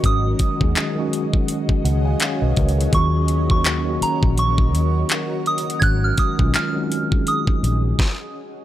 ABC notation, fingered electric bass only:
X:1
M:4/4
L:1/16
Q:"Swing 16ths" 1/4=83
K:Abdor
V:1 name="Fingered electric bass" clef=bass
A,,,2 z E,, z6 D,,2 z C,, D,,2 | E,,6 z B,,,3 E,,2 z4 | A,,,2 z C,, z6 B,,,2 z4 |]